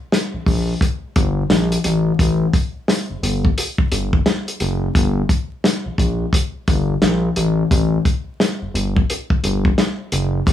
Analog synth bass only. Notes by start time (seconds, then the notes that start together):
0.34 A#1
0.47 A#1
1.16 G1
1.50 A#1
1.85 A1
2.19 A1
3.10 G1
3.23 G1
3.92 G1
4.61 F#1
4.95 G1
5.86 A#1
5.98 A#1
6.68 G1
7.02 A#1
7.36 A1
7.71 A1
8.61 G1
8.74 G1
9.43 G1
10.12 F#1
10.47 G1